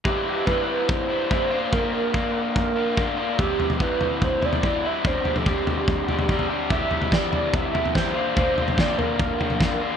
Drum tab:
SD |----------------|----------------|----------------|----------------|
FT |----------------|----------------|o-oo--o-o-oo----|o-ooo-o-o-oo-o--|
BD |o---o---o---o---|o---o---o---o---|o---o---o---o---|o---o---o---o---|

SD |----o-------o---|----o-------o---|
FT |o-oo--o-o-oo----|o-oo--o-o-oo----|
BD |o---o---o---o---|o---o---o---o---|